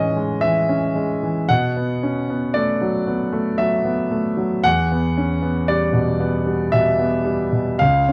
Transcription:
Already playing: A2 E3 G#3 C#4 D#4 C#5 D#5
0.16 G#3
0.41 E3 E5
0.69 C#4
0.95 G#3
1.23 E3
1.49 B2 F#5
1.76 B3
2.03 C#4
2.30 B3
2.54 A3 D5
2.81 F#3
3.07 B3
3.32 A3
3.58 F#3 E5
3.84 B3
4.11 A3
4.37 F#3
4.64 E2 F#5
4.92 B3
5.17 C#4
5.42 B3
5.68 G3 D5
5.93 B2
6.20 B3
6.46 G3
6.72 B2 E5
6.99 B3
7.25 G3
7.52 B2
7.79 C#2 F5
8.09 C#4

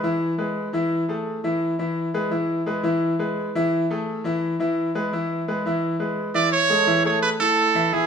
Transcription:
0.03 E3 E4 E5
0.38 G#3 G#4 B4
0.73 E3 E4 E5
1.08 A3 G#4 A4
1.44 E3 E4 E5
1.79 E3 E4 E5
2.14 G#3 G#4 B4
2.31 E3 E4 E5
2.66 G#3 G#4 B4
2.83 E3 E4 E5
3.19 G#3 G#4 B4
3.55 E3 E4 E5
3.91 A3 G#4 A4
4.24 E3 E4 E5
4.60 E3 E4 E5
4.95 G#3 G#4 B4
5.13 E3 E4 E5
5.48 G#3 G#4 B4
5.66 E3 E4 E5
5.99 G#3 G#4 B4
6.34 E3 E4 D5 E5
6.52 C#5
6.70 G#3 G#4 A4
6.87 E3 E4 E5
7.05 A3 G#4 A4 C#5
7.22 B4
7.40 A3 E4 A4
7.75 E3 E4 E5
7.93 E3 E4 G#4 E5

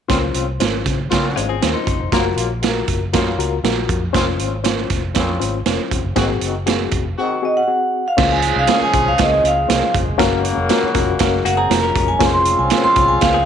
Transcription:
0.08 C#2 C#3 C4 C#4 F4 C5, kick, snare, closed hi-hat
0.34 C2 C#3 C4 F4, closed hi-hat
0.60 G#1 C#4 F4 C5, snare, closed hi-hat
0.86 C#3, kick, snare, closed hi-hat
1.11 C#3 C4 C#4 F4 C5, kick, snare, closed hi-hat
1.36 G#1 G#3 C#4 F4 C5, closed hi-hat
1.49 C4 G#4
1.62 D#2 C#4 F4 C5, snare, closed hi-hat
1.74 D#4 C5
1.87 F#1, kick, closed hi-hat
1.99 F1
2.12 F#1 C#3 A#3 F4 F#4 A#4, kick, snare, closed hi-hat
2.36 A#1 C#3 A#3 F4, closed hi-hat
2.63 F4 F#4 A4, snare, closed hi-hat
2.69 A#4
2.88 F#1, kick, closed hi-hat
3.13 F#2 C#3 A#3 F4 F#4 A#4, kick, snare, closed hi-hat
3.38 C#2 F4 F#4 A#4, closed hi-hat
3.63 A#1 F4 F#4 A#4, snare, closed hi-hat
3.89 F2, kick, closed hi-hat
4.13 F1 C#3 C4 C#4 E4 F4 C5, kick, snare, closed hi-hat
4.20 F4
4.39 G#1 C#3 C4 F4, closed hi-hat
4.63 C#4 F4 C5, snare, closed hi-hat
4.90 F1, kick, snare, closed hi-hat
5.14 F2 C#3 C4 C#4 F4 C5, kick, snare, closed hi-hat
5.40 G#1 C#4 F4 C5, closed hi-hat
5.66 F1 C#4 F4 C5, snare, closed hi-hat
5.91 F1, kick, closed hi-hat
6.04 F#1
6.16 G#1 D#3 C4 F#4 G#4, kick, snare, closed hi-hat
6.41 F#1 D#3 C4 F#4, closed hi-hat
6.66 C4 F#4 G#4, snare, closed hi-hat
6.91 F1, kick, closed hi-hat
7.18 D#3 C4 F#4 G#4
7.42 C4 F#4 G#4 D#5
7.57 F#5
7.67 C4 F#4 G#4
8.08 F5
8.17 C#2 C#3 F3 G#3 C#4 E4 G#4 C5, kick, snare, crash
8.24 F4
8.32 G#5
8.42 closed hi-hat
8.56 C2 F5
8.67 C#4 F4 G#4 C5, snare, closed hi-hat
8.81 G#5, muted fingered electric bass stroke
8.93 C2 C#4 F4 G#4 C5, kick, closed hi-hat
9.08 F5
9.18 C#2 C#4 E4 G#4 C5 D#5, kick, snare, closed hi-hat
9.25 F4
9.44 C#2 F5, closed hi-hat
9.68 C2 C#4 F4 G#4 C5, snare, closed hi-hat
9.95 F#1, kick, closed hi-hat
10.07 F1
10.17 F#1 C#3 F#3 A#3 C#4 F#4 A#4 F5, kick, snare, closed hi-hat
10.45 closed hi-hat
10.57 F1
10.69 C#4 F4 F#4 A#4, snare, closed hi-hat
10.83 muted fingered electric bass stroke
10.94 F1 C#4 F4 F#4 A#4, kick, snare, closed hi-hat
11.19 F#1 C#4 F#4 A#4 F5, kick, snare, closed hi-hat
11.45 F#1 A#3 F#4 F#5, closed hi-hat
11.57 C4 G#4 A#5
11.70 F1 C#4 F4 F#4 A#4, snare, closed hi-hat
11.83 C#4 A#4
11.96 F1, kick, closed hi-hat
12.08 G#5
12.19 F1 C#3 C4 C#4 F4 G#4 A#4 C5, kick, snare, closed hi-hat
12.26 C5
12.34 C6
12.45 closed hi-hat
12.59 C2 G#5
12.70 C#4 F4 G#4 C5, snare, closed hi-hat
12.84 C6, muted fingered electric bass stroke
12.96 C2 C#4 F4 G#4 C5, kick, closed hi-hat
13.08 G#5
13.21 C#2 C#4 F4 G#4 C5 F5, kick, snare, closed hi-hat
13.34 C4 G#4

